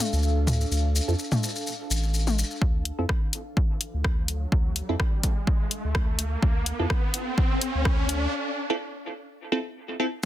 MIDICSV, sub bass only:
0, 0, Header, 1, 2, 480
1, 0, Start_track
1, 0, Key_signature, -1, "minor"
1, 0, Tempo, 476190
1, 717, Time_signature, 4, 2, 24, 8
1, 10334, End_track
2, 0, Start_track
2, 0, Title_t, "Sub bass"
2, 0, Program_c, 0, 38
2, 128, Note_on_c, 0, 38, 99
2, 655, Note_off_c, 0, 38, 0
2, 716, Note_on_c, 0, 38, 97
2, 1013, Note_off_c, 0, 38, 0
2, 1089, Note_on_c, 0, 41, 93
2, 1158, Note_off_c, 0, 41, 0
2, 1917, Note_on_c, 0, 33, 98
2, 2454, Note_off_c, 0, 33, 0
2, 2637, Note_on_c, 0, 38, 100
2, 2934, Note_off_c, 0, 38, 0
2, 3010, Note_on_c, 0, 41, 97
2, 3079, Note_off_c, 0, 41, 0
2, 3969, Note_on_c, 0, 38, 96
2, 4495, Note_off_c, 0, 38, 0
2, 4557, Note_on_c, 0, 38, 97
2, 4854, Note_off_c, 0, 38, 0
2, 4930, Note_on_c, 0, 41, 101
2, 4999, Note_off_c, 0, 41, 0
2, 5889, Note_on_c, 0, 38, 97
2, 6415, Note_off_c, 0, 38, 0
2, 6477, Note_on_c, 0, 38, 97
2, 6774, Note_off_c, 0, 38, 0
2, 6849, Note_on_c, 0, 41, 97
2, 6918, Note_off_c, 0, 41, 0
2, 7809, Note_on_c, 0, 38, 103
2, 8335, Note_off_c, 0, 38, 0
2, 10334, End_track
0, 0, End_of_file